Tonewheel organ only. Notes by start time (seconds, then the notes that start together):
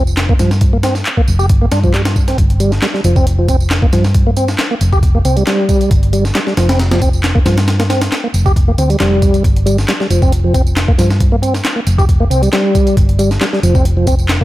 0.29 A#3
0.40 F3
0.73 A#3
0.83 C4
1.17 A#3
1.39 G4
1.62 A#3
1.72 D4
1.84 F3
1.94 G3
2.28 C4
2.60 G3
2.82 G3
2.94 G3
3.05 F3
3.16 C4
3.39 F3
3.49 C4
3.82 A#3
3.93 F3
4.27 A#3
4.37 C4
4.71 A#3
4.92 G4
5.15 A#3
5.25 C4
5.37 G3
5.47 G3
6.13 G3
6.35 G3
6.47 G3
6.57 F3
6.69 C4
6.91 F3
7.01 C4
7.35 A#3
7.45 F3
7.79 A#3
7.90 C4
8.24 A#3
8.46 G4
8.68 A#3
8.78 C4
8.90 G3
9.00 G3
9.66 G3
9.89 G3
10.01 G3
10.11 F3
10.22 C4
10.44 F3
10.54 C4
10.88 A#3
10.98 F3
11.32 A#3
11.42 C4
11.76 A#3
11.98 G4
12.20 A#3
12.30 C4
12.42 G3
12.53 G3
13.19 G3
13.41 G3
13.53 G3
13.63 F3
13.75 C4
13.97 F3
14.07 C4
14.41 A#3